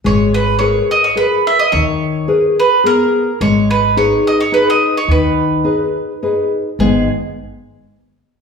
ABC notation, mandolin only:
X:1
M:3/4
L:1/16
Q:1/4=107
K:G#m
V:1 name="Mandolin"
c2 B2 c2 d c B2 e d | c6 B2 A4 | c2 B2 c2 d c B d2 c | B8- B2 z2 |
G2 z8 z2 |]